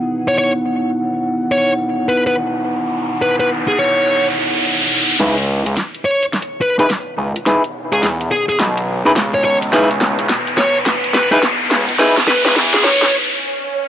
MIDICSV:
0, 0, Header, 1, 8, 480
1, 0, Start_track
1, 0, Key_signature, 4, "minor"
1, 0, Tempo, 566038
1, 569, Time_signature, 4, 2, 24, 8
1, 11770, End_track
2, 0, Start_track
2, 0, Title_t, "Lead electric guitar"
2, 0, Program_c, 0, 29
2, 237, Note_on_c, 0, 73, 78
2, 296, Note_off_c, 0, 73, 0
2, 325, Note_on_c, 0, 73, 72
2, 424, Note_off_c, 0, 73, 0
2, 1286, Note_on_c, 0, 73, 82
2, 1442, Note_off_c, 0, 73, 0
2, 1771, Note_on_c, 0, 71, 81
2, 1867, Note_off_c, 0, 71, 0
2, 1923, Note_on_c, 0, 71, 72
2, 1978, Note_off_c, 0, 71, 0
2, 2729, Note_on_c, 0, 71, 82
2, 2826, Note_off_c, 0, 71, 0
2, 2882, Note_on_c, 0, 71, 70
2, 2938, Note_off_c, 0, 71, 0
2, 3119, Note_on_c, 0, 68, 83
2, 3190, Note_off_c, 0, 68, 0
2, 3211, Note_on_c, 0, 73, 86
2, 3602, Note_off_c, 0, 73, 0
2, 5129, Note_on_c, 0, 73, 86
2, 5283, Note_off_c, 0, 73, 0
2, 5608, Note_on_c, 0, 71, 81
2, 5705, Note_off_c, 0, 71, 0
2, 5760, Note_on_c, 0, 71, 71
2, 5817, Note_off_c, 0, 71, 0
2, 6721, Note_on_c, 0, 68, 87
2, 6813, Note_off_c, 0, 68, 0
2, 7049, Note_on_c, 0, 68, 87
2, 7146, Note_off_c, 0, 68, 0
2, 7199, Note_on_c, 0, 68, 75
2, 7256, Note_off_c, 0, 68, 0
2, 7922, Note_on_c, 0, 73, 82
2, 7978, Note_off_c, 0, 73, 0
2, 8008, Note_on_c, 0, 73, 75
2, 8106, Note_off_c, 0, 73, 0
2, 8969, Note_on_c, 0, 73, 92
2, 9123, Note_off_c, 0, 73, 0
2, 9447, Note_on_c, 0, 71, 84
2, 9545, Note_off_c, 0, 71, 0
2, 9599, Note_on_c, 0, 71, 79
2, 9657, Note_off_c, 0, 71, 0
2, 10411, Note_on_c, 0, 71, 90
2, 10507, Note_off_c, 0, 71, 0
2, 10560, Note_on_c, 0, 71, 75
2, 10617, Note_off_c, 0, 71, 0
2, 10799, Note_on_c, 0, 68, 92
2, 10871, Note_off_c, 0, 68, 0
2, 10887, Note_on_c, 0, 73, 91
2, 11128, Note_off_c, 0, 73, 0
2, 11770, End_track
3, 0, Start_track
3, 0, Title_t, "Clean electric guitar"
3, 0, Program_c, 1, 27
3, 4405, Note_on_c, 1, 63, 82
3, 4409, Note_on_c, 1, 68, 76
3, 4412, Note_on_c, 1, 71, 91
3, 4413, Note_on_c, 1, 64, 76
3, 4539, Note_off_c, 1, 63, 0
3, 4539, Note_off_c, 1, 64, 0
3, 4539, Note_off_c, 1, 68, 0
3, 4539, Note_off_c, 1, 71, 0
3, 5756, Note_on_c, 1, 63, 90
3, 5760, Note_on_c, 1, 68, 82
3, 5764, Note_on_c, 1, 71, 99
3, 5768, Note_on_c, 1, 64, 82
3, 5808, Note_off_c, 1, 63, 0
3, 5808, Note_off_c, 1, 64, 0
3, 5808, Note_off_c, 1, 68, 0
3, 5808, Note_off_c, 1, 71, 0
3, 6327, Note_on_c, 1, 63, 84
3, 6330, Note_on_c, 1, 68, 77
3, 6332, Note_on_c, 1, 71, 92
3, 6336, Note_on_c, 1, 64, 77
3, 6460, Note_off_c, 1, 63, 0
3, 6460, Note_off_c, 1, 64, 0
3, 6460, Note_off_c, 1, 68, 0
3, 6460, Note_off_c, 1, 71, 0
3, 7677, Note_on_c, 1, 63, 93
3, 7681, Note_on_c, 1, 68, 83
3, 7685, Note_on_c, 1, 71, 102
3, 7688, Note_on_c, 1, 64, 83
3, 7728, Note_off_c, 1, 63, 0
3, 7728, Note_off_c, 1, 64, 0
3, 7728, Note_off_c, 1, 68, 0
3, 7728, Note_off_c, 1, 71, 0
3, 8247, Note_on_c, 1, 63, 87
3, 8248, Note_on_c, 1, 68, 80
3, 8251, Note_on_c, 1, 71, 95
3, 8253, Note_on_c, 1, 64, 79
3, 8379, Note_off_c, 1, 63, 0
3, 8379, Note_off_c, 1, 68, 0
3, 8379, Note_off_c, 1, 71, 0
3, 8380, Note_off_c, 1, 64, 0
3, 9595, Note_on_c, 1, 63, 95
3, 9600, Note_on_c, 1, 68, 88
3, 9604, Note_on_c, 1, 71, 104
3, 9608, Note_on_c, 1, 64, 84
3, 9647, Note_off_c, 1, 63, 0
3, 9647, Note_off_c, 1, 71, 0
3, 9648, Note_off_c, 1, 64, 0
3, 9648, Note_off_c, 1, 68, 0
3, 10165, Note_on_c, 1, 63, 89
3, 10167, Note_on_c, 1, 68, 83
3, 10169, Note_on_c, 1, 71, 100
3, 10172, Note_on_c, 1, 64, 80
3, 10298, Note_off_c, 1, 68, 0
3, 10298, Note_off_c, 1, 71, 0
3, 10299, Note_off_c, 1, 63, 0
3, 10299, Note_off_c, 1, 64, 0
3, 11770, End_track
4, 0, Start_track
4, 0, Title_t, "Analog synth pad"
4, 0, Program_c, 2, 89
4, 0, Note_on_c, 2, 59, 73
4, 0, Note_on_c, 2, 63, 64
4, 0, Note_on_c, 2, 64, 65
4, 0, Note_on_c, 2, 78, 83
4, 4376, Note_off_c, 2, 59, 0
4, 4376, Note_off_c, 2, 63, 0
4, 4376, Note_off_c, 2, 64, 0
4, 4406, Note_off_c, 2, 78, 0
4, 4408, Note_on_c, 2, 59, 76
4, 4408, Note_on_c, 2, 64, 68
4, 4408, Note_on_c, 2, 73, 82
4, 4409, Note_on_c, 2, 63, 69
4, 8215, Note_off_c, 2, 73, 0
4, 8251, Note_on_c, 2, 71, 84
4, 11095, Note_off_c, 2, 59, 0
4, 11095, Note_off_c, 2, 63, 0
4, 11095, Note_off_c, 2, 64, 0
4, 11101, Note_off_c, 2, 71, 0
4, 11770, End_track
5, 0, Start_track
5, 0, Title_t, "Analog synth bass"
5, 0, Program_c, 3, 38
5, 4408, Note_on_c, 3, 37, 94
5, 4776, Note_off_c, 3, 37, 0
5, 4798, Note_on_c, 3, 37, 96
5, 4874, Note_off_c, 3, 37, 0
5, 6088, Note_on_c, 3, 37, 93
5, 6216, Note_off_c, 3, 37, 0
5, 6721, Note_on_c, 3, 37, 95
5, 6795, Note_off_c, 3, 37, 0
5, 6807, Note_on_c, 3, 40, 95
5, 7034, Note_off_c, 3, 40, 0
5, 7289, Note_on_c, 3, 35, 100
5, 7656, Note_off_c, 3, 35, 0
5, 7679, Note_on_c, 3, 42, 93
5, 7754, Note_off_c, 3, 42, 0
5, 7768, Note_on_c, 3, 37, 94
5, 8234, Note_off_c, 3, 37, 0
5, 8248, Note_on_c, 3, 37, 98
5, 8616, Note_off_c, 3, 37, 0
5, 8640, Note_on_c, 3, 37, 98
5, 8714, Note_off_c, 3, 37, 0
5, 9928, Note_on_c, 3, 37, 97
5, 10056, Note_off_c, 3, 37, 0
5, 10560, Note_on_c, 3, 37, 99
5, 10634, Note_off_c, 3, 37, 0
5, 10649, Note_on_c, 3, 40, 94
5, 10875, Note_off_c, 3, 40, 0
5, 11770, End_track
6, 0, Start_track
6, 0, Title_t, "Riser"
6, 0, Program_c, 4, 103
6, 569, Note_on_c, 4, 60, 69
6, 4408, Note_off_c, 4, 60, 0
6, 4408, Note_on_c, 4, 60, 71
6, 11128, Note_off_c, 4, 60, 0
6, 11770, End_track
7, 0, Start_track
7, 0, Title_t, "Swell"
7, 0, Program_c, 5, 103
7, 11128, Note_on_c, 5, 60, 79
7, 11770, Note_off_c, 5, 60, 0
7, 11770, End_track
8, 0, Start_track
8, 0, Title_t, "Drums"
8, 4409, Note_on_c, 9, 38, 45
8, 4409, Note_on_c, 9, 42, 64
8, 4494, Note_off_c, 9, 38, 0
8, 4494, Note_off_c, 9, 42, 0
8, 4561, Note_on_c, 9, 42, 34
8, 4646, Note_off_c, 9, 42, 0
8, 4801, Note_on_c, 9, 42, 52
8, 4886, Note_off_c, 9, 42, 0
8, 4890, Note_on_c, 9, 38, 49
8, 4890, Note_on_c, 9, 42, 65
8, 4975, Note_off_c, 9, 38, 0
8, 4975, Note_off_c, 9, 42, 0
8, 5041, Note_on_c, 9, 42, 36
8, 5126, Note_off_c, 9, 42, 0
8, 5280, Note_on_c, 9, 42, 48
8, 5365, Note_off_c, 9, 42, 0
8, 5369, Note_on_c, 9, 38, 52
8, 5369, Note_on_c, 9, 42, 67
8, 5445, Note_off_c, 9, 42, 0
8, 5445, Note_on_c, 9, 42, 36
8, 5454, Note_off_c, 9, 38, 0
8, 5530, Note_off_c, 9, 42, 0
8, 5759, Note_on_c, 9, 42, 52
8, 5844, Note_off_c, 9, 42, 0
8, 5849, Note_on_c, 9, 38, 54
8, 5849, Note_on_c, 9, 42, 64
8, 5933, Note_off_c, 9, 38, 0
8, 5933, Note_off_c, 9, 42, 0
8, 6240, Note_on_c, 9, 42, 52
8, 6325, Note_off_c, 9, 42, 0
8, 6328, Note_on_c, 9, 38, 57
8, 6328, Note_on_c, 9, 42, 65
8, 6412, Note_off_c, 9, 38, 0
8, 6412, Note_off_c, 9, 42, 0
8, 6480, Note_on_c, 9, 42, 34
8, 6565, Note_off_c, 9, 42, 0
8, 6720, Note_on_c, 9, 42, 56
8, 6805, Note_off_c, 9, 42, 0
8, 6808, Note_on_c, 9, 38, 61
8, 6808, Note_on_c, 9, 42, 69
8, 6893, Note_off_c, 9, 38, 0
8, 6893, Note_off_c, 9, 42, 0
8, 6960, Note_on_c, 9, 42, 36
8, 7045, Note_off_c, 9, 42, 0
8, 7199, Note_on_c, 9, 42, 51
8, 7284, Note_off_c, 9, 42, 0
8, 7288, Note_on_c, 9, 38, 68
8, 7288, Note_on_c, 9, 42, 66
8, 7373, Note_off_c, 9, 38, 0
8, 7373, Note_off_c, 9, 42, 0
8, 7440, Note_on_c, 9, 42, 37
8, 7524, Note_off_c, 9, 42, 0
8, 7768, Note_on_c, 9, 38, 68
8, 7768, Note_on_c, 9, 42, 68
8, 7853, Note_off_c, 9, 38, 0
8, 7853, Note_off_c, 9, 42, 0
8, 8160, Note_on_c, 9, 42, 56
8, 8245, Note_off_c, 9, 42, 0
8, 8249, Note_on_c, 9, 38, 72
8, 8249, Note_on_c, 9, 42, 67
8, 8334, Note_off_c, 9, 38, 0
8, 8334, Note_off_c, 9, 42, 0
8, 8401, Note_on_c, 9, 42, 35
8, 8485, Note_off_c, 9, 42, 0
8, 8489, Note_on_c, 9, 38, 74
8, 8573, Note_off_c, 9, 38, 0
8, 8640, Note_on_c, 9, 42, 53
8, 8725, Note_off_c, 9, 42, 0
8, 8729, Note_on_c, 9, 38, 76
8, 8729, Note_on_c, 9, 42, 66
8, 8814, Note_off_c, 9, 38, 0
8, 8814, Note_off_c, 9, 42, 0
8, 8881, Note_on_c, 9, 42, 38
8, 8966, Note_off_c, 9, 42, 0
8, 8970, Note_on_c, 9, 38, 79
8, 9054, Note_off_c, 9, 38, 0
8, 9210, Note_on_c, 9, 38, 85
8, 9210, Note_on_c, 9, 42, 69
8, 9295, Note_off_c, 9, 38, 0
8, 9295, Note_off_c, 9, 42, 0
8, 9361, Note_on_c, 9, 42, 38
8, 9446, Note_off_c, 9, 42, 0
8, 9448, Note_on_c, 9, 38, 84
8, 9533, Note_off_c, 9, 38, 0
8, 9601, Note_on_c, 9, 42, 52
8, 9685, Note_off_c, 9, 42, 0
8, 9689, Note_on_c, 9, 38, 89
8, 9689, Note_on_c, 9, 42, 69
8, 9774, Note_off_c, 9, 38, 0
8, 9774, Note_off_c, 9, 42, 0
8, 9928, Note_on_c, 9, 38, 88
8, 10013, Note_off_c, 9, 38, 0
8, 10081, Note_on_c, 9, 42, 54
8, 10166, Note_off_c, 9, 42, 0
8, 10169, Note_on_c, 9, 38, 92
8, 10169, Note_on_c, 9, 42, 65
8, 10254, Note_off_c, 9, 38, 0
8, 10254, Note_off_c, 9, 42, 0
8, 10321, Note_on_c, 9, 38, 76
8, 10321, Note_on_c, 9, 42, 34
8, 10406, Note_off_c, 9, 38, 0
8, 10406, Note_off_c, 9, 42, 0
8, 10409, Note_on_c, 9, 38, 93
8, 10493, Note_off_c, 9, 38, 0
8, 10561, Note_on_c, 9, 38, 86
8, 10646, Note_off_c, 9, 38, 0
8, 10650, Note_on_c, 9, 38, 97
8, 10650, Note_on_c, 9, 42, 67
8, 10734, Note_off_c, 9, 38, 0
8, 10734, Note_off_c, 9, 42, 0
8, 10801, Note_on_c, 9, 38, 85
8, 10801, Note_on_c, 9, 42, 37
8, 10886, Note_off_c, 9, 38, 0
8, 10886, Note_off_c, 9, 42, 0
8, 10889, Note_on_c, 9, 38, 99
8, 10974, Note_off_c, 9, 38, 0
8, 11040, Note_on_c, 9, 38, 84
8, 11125, Note_off_c, 9, 38, 0
8, 11770, End_track
0, 0, End_of_file